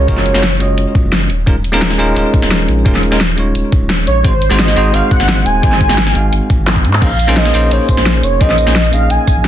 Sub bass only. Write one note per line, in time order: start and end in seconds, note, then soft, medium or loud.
0.08 0.33 F#1 loud
0.35 0.59 F#1 medium
0.60 0.76 F#1 medium
0.78 0.86 F#1 medium
1.04 1.28 F#1 loud
1.30 1.45 D#1 medium
1.47 1.72 D#1 loud
1.73 1.98 D#1 medium
1.99 2.15 D#1 medium
2.16 2.24 D#1 medium
2.43 2.67 D#1 loud
2.68 2.84 A#1 medium
2.86 3.10 D#1 loud
3.12 3.36 D#1 medium
3.38 3.53 D#1 medium
3.55 3.63 D#1 medium
3.81 4.06 D#1 loud
4.07 4.23 A#1 medium
4.24 4.49 G#1 medium
4.51 4.75 G#1 medium
4.77 4.92 G#1 medium
4.94 5.02 G#1 medium
5.20 5.45 G#1 loud
5.46 5.62 D#1 medium
5.63 5.88 G#1 loud
5.89 6.14 G#1 medium
6.15 6.31 G#1 medium
6.33 6.41 G#1 medium
6.59 6.86 G#1 medium
6.85 7.00 G#2 medium
7.02 7.27 A#1 loud
7.28 7.53 A#1 medium
7.54 7.70 A#1 medium
7.71 7.79 A#1 medium
7.97 8.22 A#1 loud
8.24 8.39 F1 medium
8.41 8.65 A#1 loud
8.67 8.91 A#1 medium
8.93 9.09 A#1 loud
9.10 9.18 A#1 medium
9.36 9.48 A#1 loud